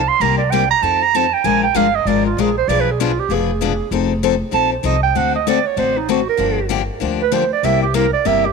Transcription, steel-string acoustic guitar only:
0.21 0.40 C3 medium
0.21 0.40 G3 medium
0.21 0.40 A#3 medium
0.21 0.40 D#4 medium
0.21 0.41 G4 medium
0.52 0.62 C3 medium
0.52 0.63 G3 medium
0.52 0.63 A#3 medium
0.52 0.63 D#4 medium
0.52 0.63 G4 medium
0.83 1.02 F3 soft
0.83 1.02 C4 medium
0.83 1.03 D#4 medium
0.83 1.03 A4 medium
1.15 1.25 F3 medium
1.15 1.25 C4 medium
1.15 1.25 D#4 medium
1.15 1.25 A4 medium
1.44 1.64 F3 medium
1.44 1.64 G#3 medium
1.44 1.64 D4 medium
1.44 1.64 F4 medium
1.44 1.64 A#4 medium
1.75 1.85 F3 medium
1.75 1.86 G#3 medium
1.75 1.86 D4 medium
1.75 1.86 F4 medium
1.75 1.86 A#4 medium
2.07 2.26 F3 medium
2.07 2.26 G#3 medium
2.07 2.26 D4 medium
2.07 2.26 F4 medium
2.07 2.27 A#4 medium
2.38 2.48 F3 medium
2.38 2.48 G#3 medium
2.38 2.49 D4 medium
2.38 2.49 F4 medium
2.38 2.49 A#4 medium
2.69 2.88 B2 medium
2.69 2.88 F3 medium
2.69 2.88 B3 medium
2.69 2.89 D4 medium
2.69 2.89 G#4 medium
2.69 2.89 B4 medium
3.00 3.10 B2 medium
3.00 3.10 F3 medium
3.00 3.10 B3 medium
3.00 3.11 D4 medium
3.00 3.10 G#4 loud
3.00 3.11 B4 medium
3.30 3.49 B2 medium
3.30 3.50 F3 medium
3.30 3.50 B3 medium
3.30 3.50 D4 medium
3.30 3.50 G#4 medium
3.30 3.50 B4 medium
3.61 3.72 B2 medium
3.61 3.72 F3 medium
3.61 3.72 B3 medium
3.61 3.72 D4 medium
3.61 3.72 G#4 medium
3.61 3.72 B4 medium
3.92 4.11 F3 medium
3.92 4.12 C4 medium
3.92 4.12 D#4 medium
3.92 4.12 A4 medium
4.23 4.34 F3 medium
4.23 4.34 C4 medium
4.23 4.34 D#4 medium
4.23 4.34 A4 loud
4.51 4.72 F3 soft
4.51 4.72 C4 medium
4.51 4.73 D#4 medium
4.51 4.73 A4 medium
4.83 4.94 F3 medium
4.83 4.95 C4 medium
4.83 4.95 D#4 medium
4.83 4.95 A4 medium
5.15 5.35 D3 medium
5.15 5.35 A3 medium
5.15 5.35 C4 medium
5.15 5.35 F#4 medium
5.15 5.36 A4 medium
5.47 5.57 D3 medium
5.47 5.57 A3 medium
5.47 5.58 C4 loud
5.47 5.58 F#4 medium
5.47 5.58 A4 medium
5.77 5.97 D3 medium
5.77 5.97 A3 medium
5.77 5.97 C4 medium
5.77 5.97 F#4 medium
5.77 5.97 A4 medium
6.09 6.19 D3 medium
6.09 6.19 A3 medium
6.09 6.20 C4 medium
6.09 6.20 F#4 medium
6.09 6.20 A4 medium
6.37 6.58 D3 medium
6.37 6.59 F3 medium
6.37 6.58 A#3 medium
6.37 6.59 D4 medium
6.37 6.59 G4 medium
6.69 6.80 D3 medium
6.69 6.81 F3 medium
6.69 6.81 A#3 medium
6.69 6.81 D4 loud
6.69 6.81 G4 medium
7.00 7.20 D3 medium
7.00 7.21 F3 medium
7.00 7.21 A#3 medium
7.00 7.21 D4 medium
7.00 7.21 G4 medium
7.32 7.43 D3 medium
7.32 7.43 F3 medium
7.32 7.43 A#3 medium
7.32 7.43 D4 medium
7.32 7.43 G4 medium
7.63 7.83 C3 medium
7.63 7.84 G3 medium
7.63 7.83 A#3 medium
7.63 7.83 E4 medium
7.63 7.83 G4 medium
7.94 8.05 C3 medium
7.94 8.05 G3 loud
7.94 8.05 A#3 loud
7.94 8.05 E4 loud
7.94 8.05 G4 medium
8.25 8.45 C3 medium
8.25 8.45 G3 medium
8.25 8.45 A#3 medium
8.25 8.45 E4 medium
8.25 8.45 G4 medium

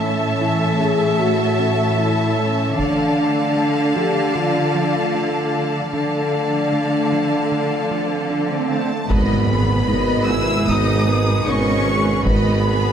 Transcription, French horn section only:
0.00 0.80 C#4 medium
0.79 1.19 G#4 medium
1.20 1.99 F#4 medium
1.98 2.38 E4 medium
2.39 2.79 C#4 medium
2.77 3.94 D4 medium
3.96 4.36 G4 medium
4.35 5.77 F4 medium
5.94 8.27 D4 medium
8.70 9.07 A3 soft
9.10 10.29 B3 medium
10.30 10.68 E4 medium
10.68 11.47 D#4 medium
11.47 12.26 C#4 medium
12.26 12.92 B3 medium

